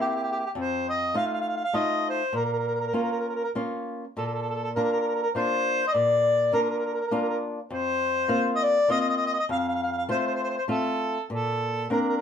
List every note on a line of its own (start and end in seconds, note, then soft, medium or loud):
0.00 0.43 A#3 soft
0.00 0.43 C4 soft
0.00 0.43 E4 soft
0.00 0.06 G4 medium
0.08 0.14 G4 soft
0.15 0.21 G4 soft
0.23 0.29 G4 soft
0.32 0.36 G4 medium
0.39 0.44 G4 soft
0.46 0.50 G4 medium
0.55 1.13 F2 medium
0.55 0.86 C5 medium
0.89 1.14 D#5 medium
1.14 1.62 A3 soft
1.14 1.62 D#4 soft
1.14 1.62 F4 medium
1.14 1.23 F5 medium
1.27 1.32 F5 medium
1.34 1.40 F5 medium
1.41 1.47 F5 medium
1.48 1.54 F5 medium
1.57 1.62 F5 medium
1.64 1.78 F5 medium
1.73 2.21 A3 soft
1.73 2.21 D#4 soft
1.73 2.22 F4 medium
1.73 2.07 D#5 medium
2.09 2.33 C5 medium
2.33 2.91 A#2 soft
2.33 2.42 A#4 medium
2.45 2.51 A#4 soft
2.52 2.58 A#4 soft
2.59 2.66 A#4 soft
2.67 2.73 A#4 soft
2.75 2.79 A#4 soft
2.80 2.86 A#4 soft
2.87 2.94 A#4 soft
2.93 3.42 A#3 soft
2.93 3.42 C#4 soft
2.93 3.43 F4 soft
2.93 3.02 A#4 soft
3.03 3.10 A#4 soft
3.11 3.18 A#4 soft
3.19 3.27 A#4 soft
3.28 3.34 A#4 soft
3.35 3.41 A#4 soft
3.44 3.49 A#4 medium
3.55 4.04 A#3 soft
3.55 4.04 C#4 soft
3.55 4.04 F4 soft
4.17 4.74 A#2 soft
4.17 4.24 A4 medium
4.26 4.32 A4 soft
4.34 4.40 A4 medium
4.42 4.48 A4 soft
4.49 4.55 A4 medium
4.55 4.62 A4 soft
4.63 4.69 A4 medium
4.76 5.24 A#3 soft
4.76 5.24 D4 soft
4.76 5.24 F4 soft
4.76 4.82 A#4 medium
4.83 4.91 A#4 medium
4.92 4.99 A#4 medium
5.00 5.07 A#4 medium
5.08 5.14 A#4 soft
5.15 5.21 A#4 soft
5.22 5.28 A#4 medium
5.35 5.82 A#3 soft
5.35 5.83 D4 soft
5.35 5.83 F4 soft
5.35 5.84 C5 medium
5.87 5.94 D#5 medium
5.93 6.51 A#2 soft
5.93 6.52 D5 medium
6.53 7.00 A#3 soft
6.53 7.00 D4 soft
6.53 7.00 F4 medium
6.53 6.61 A#4 medium
6.62 6.69 A#4 medium
6.70 6.77 A#4 soft
6.78 6.85 A#4 soft
6.86 6.92 A#4 soft
6.94 6.99 A#4 soft
7.01 7.06 A#4 medium
7.07 7.13 A#4 soft
7.11 7.59 A#3 soft
7.11 7.59 D4 soft
7.11 7.59 F4 medium
7.11 7.21 A#4 soft
7.22 7.28 A#4 soft
7.29 7.36 A#4 medium
7.70 8.28 F2 soft
7.70 8.51 C5 medium
8.28 8.77 A#3 soft
8.28 8.77 C4 soft
8.28 8.77 F4 medium
8.56 8.64 D#5 medium
8.63 8.90 D5 medium
8.88 9.37 A#3 soft
8.88 9.37 C4 soft
8.88 9.37 F4 medium
8.88 8.98 D#5 medium
9.00 9.06 D#5 medium
9.08 9.14 D#5 medium
9.17 9.23 D#5 medium
9.26 9.31 D#5 medium
9.34 9.38 D#5 medium
9.39 9.44 D#5 medium
9.49 10.07 F2 soft
9.49 9.58 F5 medium
9.59 9.66 F5 medium
9.68 9.74 F5 medium
9.74 9.81 F5 medium
9.83 9.89 F5 medium
9.92 9.97 F5 medium
9.97 10.03 F5 medium
10.09 10.57 A3 soft
10.09 10.57 C4 soft
10.09 10.57 F4 soft
10.09 10.17 C5 medium
10.19 10.25 C5 medium
10.27 10.33 C5 medium
10.35 10.42 C5 medium
10.43 10.49 C5 medium
10.49 10.55 C5 medium
10.58 10.63 C5 medium
10.68 11.17 A3 soft
10.68 11.17 C4 soft
10.68 11.17 F4 soft
10.68 11.26 A4 medium
11.30 11.88 A#2 soft
11.30 11.87 A4 medium
11.90 12.21 A#3 soft
11.90 12.21 C4 soft
11.90 12.21 D4 soft
11.90 11.98 A#4 medium
12.01 12.07 A#4 medium
12.09 12.15 A#4 medium
12.17 12.21 A#4 medium